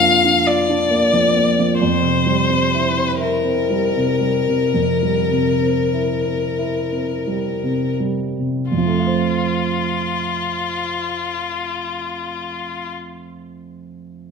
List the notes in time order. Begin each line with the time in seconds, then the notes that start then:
Already playing: F2 F3 A#3 D4 F5
0.03 F4
0.25 D4
0.47 F4 D5
0.69 D4
0.91 A#3
1.13 F3
1.36 A#3
1.59 F3
1.80 F2 C5
2.03 C3
2.26 G3
2.50 C4
2.74 E4
2.97 C4
3.20 E4 A#4
3.44 C4
3.70 G3
3.96 C3
4.21 G3
4.48 C3
4.74 F2
5.03 G3
5.31 C3
5.61 C4
5.94 E4
6.26 C4
6.59 E4
6.92 C4
7.27 G3
7.63 C3
8.00 G3
8.39 C3
8.71 F2 F4
8.78 F3
8.85 A3
8.92 C4
8.99 F4
9.06 C5